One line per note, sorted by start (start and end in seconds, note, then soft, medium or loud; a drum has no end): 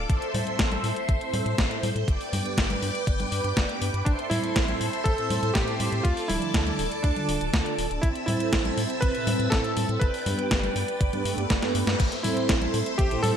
0.00 2.04 A4 medium
0.09 0.18 A1 loud
0.09 2.06 C5 medium
0.09 2.06 E5 medium
0.09 2.06 C6 medium
0.09 kick loud
0.09 closed hi-hat medium
0.22 closed hi-hat soft
0.34 0.43 A2 medium
0.34 0.69 A2 medium
0.34 0.69 C4 medium
0.34 0.69 E4 medium
0.34 0.69 A4 medium
0.34 0.69 C5 loud
0.34 open hi-hat loud
0.34 high conga medium
0.47 closed hi-hat soft
0.59 0.77 A1 loud
0.59 kick loud
0.59 snare loud
0.59 closed hi-hat medium
0.71 0.88 A2 medium
0.71 0.88 C4 medium
0.71 0.88 E4 medium
0.71 0.88 A4 medium
0.71 0.88 C5 medium
0.71 closed hi-hat soft
0.71 high conga medium
0.84 0.92 A2 medium
0.84 open hi-hat medium
0.96 closed hi-hat soft
1.09 1.17 A1 loud
1.09 kick loud
1.09 closed hi-hat medium
1.21 1.55 A2 loud
1.21 1.55 C4 medium
1.21 1.55 E4 medium
1.21 1.55 A4 medium
1.21 1.55 C5 loud
1.21 closed hi-hat soft
1.33 1.42 A2 medium
1.33 open hi-hat loud
1.33 high conga medium
1.46 1.55 A2 medium
1.46 closed hi-hat soft
1.58 1.67 A1 medium
1.58 1.93 A2 medium
1.58 1.93 C4 medium
1.58 1.93 E4 medium
1.58 1.93 A4 medium
1.58 1.93 C5 loud
1.58 kick loud
1.58 snare loud
1.58 closed hi-hat medium
1.71 closed hi-hat soft
1.83 1.92 A2 medium
1.83 open hi-hat loud
1.83 high conga medium
1.95 2.04 A2 medium
1.95 2.07 C4 medium
1.95 2.06 E4 medium
1.95 2.06 A4 medium
1.95 2.06 C5 loud
1.95 closed hi-hat soft
2.07 2.17 G1 loud
2.07 4.04 B4 medium
2.07 4.04 D5 medium
2.07 4.04 G5 medium
2.07 4.04 D6 medium
2.07 kick loud
2.07 closed hi-hat medium
2.21 open hi-hat medium
2.33 2.41 G2 medium
2.33 2.67 G2 medium
2.33 2.67 B3 medium
2.33 2.67 D4 medium
2.33 2.67 G4 medium
2.33 2.67 B4 medium
2.33 open hi-hat loud
2.33 high conga medium
2.46 closed hi-hat soft
2.58 2.75 G1 loud
2.58 kick loud
2.58 snare loud
2.58 closed hi-hat medium
2.70 2.87 G2 medium
2.70 2.87 B3 medium
2.70 2.87 D4 medium
2.70 2.87 G4 medium
2.70 2.87 B4 medium
2.70 closed hi-hat soft
2.70 high conga medium
2.82 2.91 G2 medium
2.82 open hi-hat medium
2.95 closed hi-hat soft
3.07 3.25 G1 medium
3.07 kick loud
3.07 closed hi-hat medium
3.19 3.29 G2 medium
3.19 3.29 B3 medium
3.19 3.29 D4 medium
3.19 3.29 G4 medium
3.19 3.29 B4 loud
3.19 closed hi-hat soft
3.19 high conga medium
3.32 3.41 G2 loud
3.32 3.49 G2 medium
3.32 3.49 B3 medium
3.32 3.49 D4 medium
3.32 3.49 G4 medium
3.32 3.49 B4 medium
3.32 open hi-hat loud
3.44 3.53 G2 medium
3.44 closed hi-hat soft
3.57 3.65 G1 loud
3.57 kick loud
3.57 snare loud
3.57 closed hi-hat medium
3.69 3.96 G2 medium
3.69 3.96 B3 medium
3.69 3.96 D4 medium
3.69 3.96 G4 medium
3.69 3.96 B4 loud
3.69 closed hi-hat soft
3.81 3.90 G2 medium
3.81 open hi-hat loud
3.94 4.03 G2 loud
3.94 closed hi-hat soft
4.05 4.15 A1 loud
4.05 4.11 D4 medium
4.05 7.99 A4 medium
4.05 6.03 C5 medium
4.05 6.03 E5 medium
4.05 6.03 C6 medium
4.05 kick loud
4.05 closed hi-hat medium
4.19 closed hi-hat soft
4.30 4.40 A2 medium
4.30 4.65 A2 medium
4.30 4.65 C4 medium
4.30 5.07 E4 loud
4.30 4.65 E4 medium
4.30 4.65 A4 medium
4.30 4.65 C5 loud
4.30 open hi-hat loud
4.30 high conga medium
4.44 closed hi-hat soft
4.56 4.73 A1 loud
4.56 kick loud
4.56 snare loud
4.56 closed hi-hat medium
4.68 4.85 A2 medium
4.68 4.85 C4 medium
4.68 4.85 E4 medium
4.68 4.85 A4 medium
4.68 4.85 C5 medium
4.68 closed hi-hat soft
4.68 high conga medium
4.81 4.89 A2 medium
4.81 open hi-hat loud
4.93 closed hi-hat soft
5.04 5.14 A1 medium
5.04 5.51 A4 loud
5.04 kick loud
5.04 closed hi-hat medium
5.18 5.52 A2 medium
5.18 5.52 C4 medium
5.18 5.52 E4 medium
5.18 5.52 A4 medium
5.18 5.52 C5 loud
5.18 closed hi-hat soft
5.30 5.39 A2 medium
5.30 open hi-hat loud
5.30 high conga medium
5.43 5.51 A2 medium
5.43 closed hi-hat soft
5.54 5.64 A1 medium
5.54 5.89 A2 medium
5.54 5.89 C4 medium
5.54 5.89 E4 medium
5.54 6.05 G4 loud
5.54 5.89 A4 medium
5.54 5.89 C5 loud
5.54 kick loud
5.54 snare loud
5.54 closed hi-hat medium
5.68 closed hi-hat soft
5.80 5.89 A2 medium
5.80 open hi-hat loud
5.80 high conga medium
5.92 6.01 A2 loud
5.92 6.03 C4 medium
5.92 6.03 E4 medium
5.92 6.03 A4 medium
5.92 6.03 C5 loud
5.92 closed hi-hat soft
6.03 6.13 D2 loud
6.03 6.30 F4 loud
6.03 8.01 D5 medium
6.03 8.01 A5 medium
6.03 8.01 D6 medium
6.03 kick loud
6.03 closed hi-hat medium
6.17 open hi-hat medium
6.28 6.38 D1 medium
6.28 6.64 D3 medium
6.28 6.64 F3 medium
6.28 6.64 D4 medium
6.28 7.05 E4 loud
6.28 6.64 A4 medium
6.28 6.64 D5 loud
6.28 open hi-hat loud
6.28 high conga medium
6.42 closed hi-hat soft
6.54 6.72 D2 loud
6.54 kick loud
6.54 snare loud
6.54 closed hi-hat medium
6.67 6.83 D3 medium
6.67 6.83 D4 medium
6.67 6.83 F4 medium
6.67 6.83 A4 medium
6.67 6.83 D5 medium
6.67 closed hi-hat soft
6.67 high conga medium
6.79 6.88 D1 medium
6.79 open hi-hat loud
6.92 closed hi-hat soft
7.03 7.13 D2 medium
7.03 7.74 D4 medium
7.03 kick loud
7.03 closed hi-hat medium
7.16 7.50 D3 medium
7.16 7.50 D4 medium
7.16 7.50 F4 medium
7.16 7.50 A4 medium
7.16 7.50 D5 loud
7.16 closed hi-hat soft
7.16 high conga medium
7.29 7.37 D1 medium
7.29 open hi-hat loud
7.41 7.50 D1 medium
7.41 closed hi-hat soft
7.53 7.62 D2 loud
7.53 7.88 D3 medium
7.53 7.88 D4 medium
7.53 7.88 F4 medium
7.53 7.88 A4 medium
7.53 7.88 D5 loud
7.53 kick loud
7.53 snare loud
7.53 closed hi-hat medium
7.66 closed hi-hat soft
7.78 7.87 D1 medium
7.78 open hi-hat loud
7.90 7.99 D1 loud
7.90 8.02 D4 medium
7.90 8.02 F4 medium
7.90 8.02 A4 medium
7.90 8.02 D5 loud
7.90 closed hi-hat soft
8.02 8.12 A1 medium
8.02 9.99 C4 medium
8.02 8.07 E4 loud
8.02 9.99 E5 medium
8.02 9.99 A5 medium
8.02 9.99 E6 medium
8.02 kick loud
8.02 closed hi-hat medium
8.16 closed hi-hat soft
8.26 8.36 A2 medium
8.26 8.62 A2 medium
8.26 8.62 C4 medium
8.26 9.04 E4 medium
8.26 8.62 E4 medium
8.26 8.62 A4 medium
8.26 8.62 C5 medium
8.26 open hi-hat loud
8.26 high conga medium
8.40 closed hi-hat soft
8.53 8.70 A1 loud
8.53 kick loud
8.53 snare loud
8.53 closed hi-hat medium
8.65 8.82 A2 medium
8.65 8.82 C4 medium
8.65 8.82 E4 medium
8.65 8.82 A4 medium
8.65 8.82 C5 medium
8.65 closed hi-hat soft
8.65 high conga medium
8.77 8.86 A2 medium
8.77 open hi-hat loud
8.90 closed hi-hat soft
9.01 9.11 A1 medium
9.01 9.52 B4 loud
9.01 kick loud
9.01 closed hi-hat medium
9.15 9.49 A2 medium
9.15 9.49 C4 medium
9.15 9.49 E4 medium
9.15 9.49 A4 medium
9.15 9.49 E5 loud
9.15 closed hi-hat soft
9.27 9.36 A2 medium
9.27 open hi-hat loud
9.27 high conga medium
9.39 9.48 A2 medium
9.39 closed hi-hat soft
9.50 9.61 A1 medium
9.50 9.86 A2 medium
9.50 9.86 C4 medium
9.50 9.86 E4 medium
9.50 10.02 A4 loud
9.50 9.86 A4 medium
9.50 9.86 C5 loud
9.50 kick loud
9.50 snare loud
9.50 closed hi-hat medium
9.64 closed hi-hat soft
9.77 9.85 A2 medium
9.77 open hi-hat loud
9.77 high conga medium
9.89 9.98 A2 loud
9.89 10.00 C4 medium
9.89 10.00 E4 medium
9.89 10.00 A4 medium
9.89 10.00 C5 loud
9.89 closed hi-hat soft
10.00 10.10 G1 medium
10.00 11.70 B4 loud
10.00 11.98 B4 medium
10.00 11.98 D5 medium
10.00 11.98 G5 medium
10.00 11.98 D6 medium
10.00 kick loud
10.00 closed hi-hat medium
10.14 open hi-hat medium
10.26 10.35 G2 medium
10.26 10.60 G2 medium
10.26 10.60 B3 medium
10.26 10.60 D4 medium
10.26 10.60 G4 medium
10.26 10.60 B4 loud
10.26 open hi-hat loud
10.26 high conga medium
10.39 closed hi-hat soft
10.51 10.68 G1 loud
10.51 kick loud
10.51 snare loud
10.51 closed hi-hat medium
10.63 10.80 G2 medium
10.63 10.80 B3 medium
10.63 10.80 D4 medium
10.63 10.80 G4 medium
10.63 10.80 B4 medium
10.63 closed hi-hat soft
10.63 high conga medium
10.76 10.84 G2 medium
10.76 open hi-hat loud
10.88 closed hi-hat soft
11.01 11.09 G1 loud
11.01 kick loud
11.01 closed hi-hat medium
11.01 swell medium
11.13 11.23 G2 medium
11.13 11.23 B3 medium
11.13 11.23 D4 medium
11.13 11.23 G4 medium
11.13 11.23 B4 loud
11.13 closed hi-hat soft
11.13 high conga medium
11.25 11.34 G2 medium
11.25 11.42 G2 medium
11.25 11.42 B3 medium
11.25 11.42 D4 medium
11.25 11.42 G4 medium
11.25 11.42 B4 medium
11.25 open hi-hat loud
11.37 11.46 G2 medium
11.37 closed hi-hat soft
11.50 11.59 G1 loud
11.50 kick loud
11.50 snare loud
11.50 closed hi-hat medium
11.63 11.89 G2 medium
11.63 11.89 B3 medium
11.63 11.89 D4 medium
11.63 11.89 G4 medium
11.63 11.89 B4 medium
11.63 snare medium
11.63 closed hi-hat soft
11.75 11.84 G2 medium
11.75 open hi-hat loud
11.87 11.96 G2 medium
11.87 snare loud
11.87 closed hi-hat soft
11.99 12.08 A1 loud
11.99 13.37 A4 medium
11.99 13.37 C5 medium
11.99 13.37 E5 medium
11.99 13.37 C6 medium
11.99 kick loud
11.99 closed hi-hat medium
11.99 crash loud
12.12 closed hi-hat soft
12.23 12.59 A2 medium
12.23 12.33 A2 medium
12.23 12.59 C4 medium
12.23 12.94 E4 medium
12.23 12.59 E4 medium
12.23 12.59 A4 medium
12.23 12.59 C5 loud
12.23 open hi-hat loud
12.23 high conga medium
12.37 closed hi-hat soft
12.49 12.67 A1 loud
12.49 kick loud
12.49 snare loud
12.49 closed hi-hat medium
12.62 12.78 A2 medium
12.62 12.78 C4 medium
12.62 12.79 E4 medium
12.62 12.78 A4 medium
12.62 12.78 C5 medium
12.62 closed hi-hat soft
12.62 high conga medium
12.74 12.83 A2 medium
12.74 open hi-hat loud
12.86 closed hi-hat soft
12.98 13.16 A1 loud
12.98 13.24 G4 loud
12.98 kick loud
12.98 closed hi-hat medium
13.11 13.21 A2 loud
13.11 13.21 C4 medium
13.11 13.21 E4 medium
13.11 13.21 A4 medium
13.11 13.21 C5 loud
13.11 closed hi-hat soft
13.23 13.32 A2 loud
13.23 13.37 A2 medium
13.23 13.37 C4 medium
13.23 13.37 E4 medium
13.23 13.37 A4 loud
13.23 13.37 A4 medium
13.23 13.37 C5 loud
13.23 open hi-hat loud
13.23 high conga medium